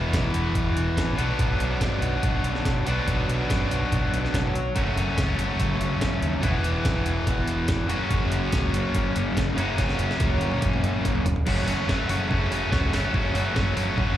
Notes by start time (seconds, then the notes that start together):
Already playing: E2 B2 E3 B3 E4 F#4
0.13 B1, kick, snare, closed hi-hat
0.34 E1, closed hi-hat
0.55 E1, kick, closed hi-hat
0.76 E1, closed hi-hat
0.97 A1, kick, snare, closed hi-hat
1.16 B1 B2 F#3 B3 D4 F#4, closed hi-hat
1.39 B1, kick, closed hi-hat
1.60 B1, closed hi-hat
1.81 F#1, kick, snare, closed hi-hat
2.02 B1, closed hi-hat
2.23 B1, kick, closed hi-hat
2.44 B1, closed hi-hat
2.55 snare
2.65 B1, kick, snare, closed hi-hat
2.86 B1 B2 F#3 B3 D4 F#4, closed hi-hat
3.08 B1, kick, closed hi-hat
3.28 B1, closed hi-hat
3.50 F#2, kick, snare, closed hi-hat
3.70 B1, closed hi-hat
3.92 B1, kick, closed hi-hat
4.12 B1, closed hi-hat
4.25 snare
4.34 B1, kick, snare, closed hi-hat
4.54 B1, closed hi-hat
4.75 F#1 F#2 C#3 F#3 A3 C#4 F#4, kick, closed hi-hat
4.96 F#1, closed hi-hat
5.18 C#2, kick, snare, closed hi-hat
5.38 F#1, closed hi-hat
5.60 F#1, kick, closed hi-hat
5.80 F#1, closed hi-hat
6.01 F#1, kick, snare, closed hi-hat
6.22 D#2, closed hi-hat
6.41 E1 E2 B2 E3 B3 E4 F#4, kick, closed hi-hat
6.64 E1, closed hi-hat
6.85 B1, kick, snare, closed hi-hat
7.06 E1, closed hi-hat
7.27 E1, kick, closed hi-hat
7.47 E1, closed hi-hat
7.68 E1, kick, snare, closed hi-hat
7.88 F#1 F#2 C#3 F#3 A#3 C#4 F#4, closed hi-hat
8.10 F#1, kick, closed hi-hat
8.32 F#1, closed hi-hat
8.52 C#2, kick, snare, closed hi-hat
8.73 F#1, closed hi-hat
8.95 F#1, kick, closed hi-hat
9.16 F#1, closed hi-hat
9.37 F#1, kick, snare, closed hi-hat
9.56 F#1 F#2 C#3 F#3 A#3 C#4 F#4, closed hi-hat
9.78 F#1, kick, snare, closed hi-hat
9.89 snare
9.99 F#1, closed hi-hat
10.11 snare
10.20 C#2, kick, closed hi-hat, high tom
10.41 F#1, closed hi-hat, high tom
10.52 mid tom
10.62 F#1, kick, closed hi-hat
10.73 mid tom
10.83 F#1, closed hi-hat, mid tom
11.05 F#1, kick, closed hi-hat, mid tom
11.15 floor tom
11.26 F#1, closed hi-hat, floor tom
11.36 floor tom
11.46 F#1 F#2 C#3 F#3 A3 C#4 F#4, kick, crash
11.67 F#1 F#2 C#3 F#3 A3 C#4 F#4, open hi-hat
11.87 F#1 F#2 C#3 F#3 A3 C#4 F#4, kick, snare
12.08 F#1 F#2 C#3 F#3 A3 C#4 F#4, open hi-hat
12.29 F#1 F#2 C#3 F#3 A3 C#4 F#4, kick
12.50 F#2 C#3 F#3 A3 C#4 F#4, open hi-hat
12.71 C#2 F#2 C#3 F#3 A3 C#4 F#4, kick, snare
12.92 F#1 F#2 C#3 F#3 A3 C#4 F#4, snare, open hi-hat
13.14 F#1 F#2 C#3 F#3 A3 C#4 F#4, kick
13.34 F#1 F#2 C#3 F#3 A3 C#4 F#4, open hi-hat
13.54 F#1 F#2 C#3 F#3 A3 C#4 F#4, kick, snare
13.77 F#1 F#2 C#3 F#3 A3 C#4 F#4, open hi-hat
13.97 F#2 C#3 F#3 A3 C#4 F#4, kick